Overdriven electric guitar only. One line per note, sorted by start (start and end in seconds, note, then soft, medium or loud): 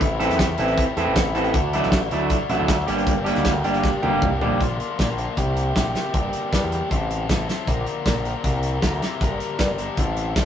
0.02 0.38 A2 loud
0.02 0.40 E3 loud
0.02 0.22 A3 loud
0.02 0.20 C4 loud
0.02 0.20 E4 loud
0.20 0.40 A3 medium
0.20 0.40 C4 medium
0.20 0.41 E4 medium
0.39 0.78 A2 loud
0.39 0.78 E3 medium
0.39 0.60 A3 medium
0.39 0.59 C4 medium
0.39 0.58 E4 medium
0.59 0.98 A3 medium
0.59 0.97 C4 medium
0.59 0.96 E4 medium
0.97 1.17 A3 medium
0.97 1.17 C4 medium
0.97 1.17 E4 medium
1.17 1.54 E3 medium
1.17 1.54 A3 medium
1.17 1.54 C4 medium
1.17 1.54 E4 medium
1.54 1.91 D3 medium
1.54 1.74 A3 loud
1.54 1.75 D4 loud
1.54 1.73 F#4 loud
1.74 1.92 A3 medium
1.74 1.93 D4 medium
1.74 1.93 F#4 medium
1.92 2.31 D3 medium
1.92 2.12 A3 medium
1.92 2.12 D4 loud
1.92 2.10 F#4 loud
2.12 2.51 A3 medium
2.12 2.51 D4 medium
2.12 2.49 F#4 medium
2.50 2.68 A3 medium
2.50 2.69 D4 medium
2.50 2.69 F#4 medium
2.68 2.87 D3 medium
2.68 2.87 A3 medium
2.68 2.87 D4 medium
2.68 2.87 F#4 medium
2.87 3.05 G2 medium
2.87 3.06 D3 medium
2.87 3.06 G3 medium
2.87 3.06 A#3 medium
2.87 3.07 D4 medium
2.87 3.07 G4 loud
3.06 3.44 G2 medium
3.06 3.44 D3 loud
3.06 3.27 G3 loud
3.06 3.26 A#3 loud
3.06 3.25 D4 loud
3.06 3.25 G4 loud
3.26 3.45 G3 medium
3.26 3.45 A#3 medium
3.26 3.45 D4 medium
3.26 3.46 G4 medium
3.45 3.84 G2 loud
3.45 3.84 D3 medium
3.45 3.64 G3 medium
3.45 3.64 A#3 loud
3.45 3.63 D4 loud
3.45 3.62 G4 loud
3.63 4.03 G3 medium
3.63 4.02 A#3 medium
3.63 4.01 D4 medium
3.63 4.01 G4 medium
4.02 4.20 G3 medium
4.02 4.21 A#3 medium
4.02 4.21 D4 medium
4.02 4.22 G4 medium
4.22 4.59 G3 medium
4.22 4.59 A#3 medium
4.22 4.60 D4 medium
4.22 4.60 G4 medium
4.60 4.98 A#2 medium
4.60 4.99 D3 medium
4.60 4.99 A#3 medium
4.60 5.00 D4 medium
4.60 5.00 F4 loud
4.99 5.18 A#2 medium
4.99 5.17 D3 medium
4.99 5.18 A#3 medium
4.99 5.18 D4 medium
4.99 5.18 F4 medium
5.19 5.36 A#2 medium
5.19 5.36 D3 medium
5.19 5.36 A#3 medium
5.19 5.37 D4 medium
5.19 5.37 F4 medium
5.37 5.74 C3 medium
5.37 5.74 G3 medium
5.37 5.75 A#3 medium
5.37 5.75 E4 medium
5.37 5.75 G4 loud
5.75 5.92 C3 medium
5.75 5.93 G3 medium
5.75 5.93 A#3 medium
5.75 5.93 E4 medium
5.75 5.94 G4 medium
5.94 6.12 C3 medium
5.94 6.12 G3 medium
5.94 6.12 A#3 medium
5.94 6.13 E4 medium
5.94 6.13 G4 medium
6.13 6.50 G2 medium
6.13 6.51 D3 medium
6.13 6.51 G3 medium
6.13 6.51 A#3 loud
6.13 6.52 D4 medium
6.13 6.52 G4 medium
6.52 6.70 G2 medium
6.52 6.70 D3 medium
6.52 6.70 G3 medium
6.52 6.70 A#3 medium
6.52 6.71 D4 medium
6.52 6.71 G4 medium
6.71 6.89 G2 medium
6.71 6.89 D3 medium
6.71 6.89 G3 medium
6.71 6.90 A#3 medium
6.71 6.90 D4 medium
6.71 6.90 G4 medium
6.89 7.27 A2 medium
6.89 7.28 E3 medium
6.89 7.28 C4 medium
6.89 7.28 E4 medium
6.89 7.28 A4 medium
7.28 7.46 A2 medium
7.28 7.46 E3 medium
7.28 7.47 C4 medium
7.28 7.47 E4 medium
7.28 7.47 A4 medium
7.47 7.66 A2 medium
7.47 7.66 E3 medium
7.47 7.66 C4 medium
7.47 7.66 E4 medium
7.47 7.67 A4 medium
7.67 8.05 A#2 medium
7.67 8.05 D3 medium
7.67 8.06 F3 medium
7.67 8.06 A#3 medium
7.67 8.06 D4 medium
7.67 8.06 A#4 medium
8.06 8.24 A#2 medium
8.06 8.24 D3 medium
8.06 8.25 F3 medium
8.06 8.25 A#3 medium
8.06 8.25 D4 medium
8.06 8.26 A#4 medium
8.25 8.43 A#2 medium
8.25 8.43 D3 medium
8.25 8.43 F3 medium
8.25 8.43 A#3 medium
8.25 8.44 D4 medium
8.25 8.44 A#4 medium
8.44 8.81 C3 medium
8.44 8.82 G3 medium
8.44 8.82 A#3 medium
8.44 8.82 E4 medium
8.44 8.83 A#4 medium
8.83 9.01 C3 medium
8.83 9.01 G3 medium
8.83 9.02 A#3 medium
8.83 9.02 E4 medium
8.83 9.02 A#4 medium
9.02 9.20 C3 medium
9.02 9.20 G3 medium
9.02 9.21 A#3 medium
9.02 9.21 E4 medium
9.02 9.21 A#4 medium
9.21 9.58 G2 medium
9.21 9.58 D3 medium
9.21 9.59 G3 medium
9.21 9.59 A#3 medium
9.21 9.59 D4 medium
9.21 9.59 A#4 loud
9.59 9.76 G2 medium
9.59 9.76 D3 medium
9.59 9.77 G3 medium
9.59 9.77 A#3 medium
9.59 9.78 D4 medium
9.59 9.78 A#4 medium
9.78 9.96 G2 medium
9.78 9.97 D3 medium
9.78 9.97 G3 medium
9.78 9.97 A#3 medium
9.78 9.97 D4 medium
9.78 9.97 A#4 medium
9.98 10.35 A2 medium
9.98 10.36 E3 medium
9.98 10.36 C4 medium
9.98 10.36 E4 medium
9.98 10.36 A4 medium
10.36 10.45 A2 medium
10.36 10.45 E3 medium
10.36 10.45 C4 medium
10.36 10.45 E4 medium
10.36 10.45 A4 medium